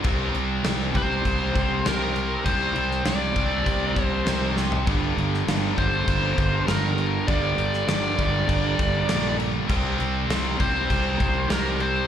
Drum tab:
CC |x-x-x-x-x-x-x-x-|x-x-x-x-x-x-x---|x-x-x-x-x-x-x-x-|x-x-x-x-x-x-x-x-|
SD |----o-------o---|---oo-------o-o-|---oo-------o---|---oo-------o---|
FT |----------------|---------------o|----------------|----------------|
BD |o-----o-o-o-----|o-----o-o-o-----|o-----o-o-o-----|o-----o-o-o-----|

CC |x-x-x-x-x-x-x-x-|
SD |----o-------o---|
FT |----------------|
BD |o-----o-o-o-----|